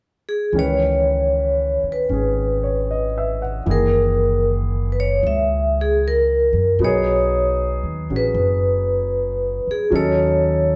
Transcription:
0.29 G#4
0.53 C#2 D#3 E3 C#4
0.58 B4 C#5
1.83 muted upright bass stroke
1.92 B4
2.09 G#1 C#4 G#4
2.63 C#5
2.91 D#5
3.18 E5
3.42 F#5
3.66 F#1 D#3 E3 A#3
3.70 G#4 A#4
4.92 B4
5.00 C#5
5.23 C#2 E5
5.81 G#4
6.08 A#4
6.53 F#2
6.79 B1 F#3 B3 D#4
6.84 G#4 C#5
7.83 D#2
8.10 A1 C#4 F#4 G#4
8.16 B4
8.34 F#1
9.67 G#4, muted upright bass stroke
9.90 D#2 F#3 C#4 D#4
9.95 A4 C#5

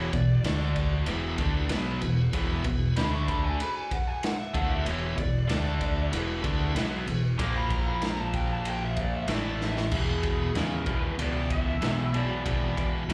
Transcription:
Already playing: E1 E2 B2 E3 B3 E4 G#4 B4 C#5
0.13 E1 E2 B2 D5, kick, ride
0.44 D2 D3 A3 D4 A4 D5, snare, ride
0.76 kick, ride
1.06 E1 E2 B2 E3 B3 E4 G#4 B4, ride
1.38 D2 D3 A3 D4, kick, ride
1.69 B1 B2 F#3 B3, snare, ride
2.00 E1 E2 B2 B3 E4 G#4 B4, ride
2.31 E1 E2 B2 E3 B3 E4 G#4 B4, kick, ride
2.64 E1 E2 B2, kick, ride
2.96 D2 D3 A3 D4 A4 D5 B5, snare, ride
3.12 C#6
3.27 B5, kick, ride
3.44 G#5
3.60 B5, ride
3.75 G#5
3.91 F#5, kick, ride
4.07 G#5
4.23 F#5, snare, ride
4.38 E5
4.53 D2 D3 A3 B3 D4 E4 G#4 B4 F#5, kick, ride
4.70 E5
4.85 E1 E2 B2 E3 C#5, ride
5.17 E1 E2 B2 D5, kick, ride
5.47 D2 D3 A3 D4 A4 D5, snare, ride
5.81 kick, ride
6.11 E1 E2 B2 E3 B3 E4 G#4 B4, ride
6.42 D2 D3 A3 D4, kick, ride
6.75 B1 B2 F#3 B3, snare, ride
7.06 E1 E2 B2 B3 E4 G#4 B4, ride
7.37 A#1 A#2 F3 A#3 F4 A#4 F5 D6, kick, ride
7.56 B5
7.70 A#5, kick, ride
7.87 B5
8.02 A#5, snare, ride
8.19 A5
8.33 G5, kick, ride
8.52 A5
8.65 G5, ride
8.84 E5
8.97 D5, kick, ride
9.15 E5
9.28 A1 A2 E3 A3 E4 A4 E5, snare, ride
9.32 D5
9.60 A3 E4 A4 E5 F#5, snare
9.77 snare
9.91 E2 B2 B3 E4 G#4 B4, kick, crash
10.23 kick, ride
10.55 D#2 E2 C#3 A#4, snare, ride
10.86 E2 B2, kick, ride
10.99 B4
11.18 C#2 E2 B2 D5, ride
11.50 E5, kick, ride
11.81 B1 E2 B2, snare, ride
12.12 E2 B2 B3 E4 G#4 C#5 D5, ride
12.43 G#1 E2 B2 B3 E4 G#4 B4, kick, ride
12.77 D5, kick, ride
13.08 C#2 E2 C#3, ride

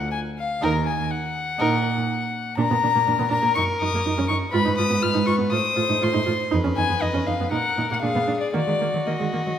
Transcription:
Already playing: F#5
0.11 G#5
0.39 F5
0.61 D#2 D#4 A#4 A#5
0.86 G#5
1.10 F#5
1.59 A#2 D#4 A#4
2.57 A#2 D4 A#4 A#5
2.70 A#2 B3
2.83 A#2 D4
2.95 A#2 A#3
3.07 A#2 D4
3.19 A#2 B3
3.30 A#2 D4 A#5
3.42 A#2 A#3
3.55 F#2 D#4 C#6
3.81 F#2 D#4 D#6
3.93 F#2 A#3
4.05 F#2 D#4
4.18 F#2 C#4
4.28 F#2 D#4 C#6
4.52 G#2 F4 B4 B5
4.65 G#2 D#4
4.78 G#2 F4 D#6
4.90 G#2 B3
5.01 G#2 F4 F6
5.14 G#2 D#4
5.26 G#2 F4 C#6
5.38 G#2 B3
5.51 A2 F4 C5 D#6
5.76 A2 F4
5.89 A2 D#4
6.01 A2 F4 C6
6.13 A2 D#4
6.26 A2 F4
6.51 F2 D#4 B4
6.64 F2 C#4
6.77 F2 D#4 G#5
6.89 F2 B3
7.01 F2 D#4 D#5
7.14 F2 C#4
7.27 F2 D#4 F5
7.40 F2 B3
7.51 A#2 D#4 A#4 F#5
7.78 A#2 D#4
7.91 A#2 A#3 F#5
8.02 A#2 D4 G#4 F5
8.15 A#2 B3
8.27 A#2 D4
8.40 D5
8.53 D#3 A#3 F#4 D5
8.67 D#3 G#3
8.80 D#3 A#3
8.94 D#3 F#3
9.07 D#3 A#3 D#5
9.19 D#3 G#3
9.33 D#3 A#3
9.46 D#3 F#3

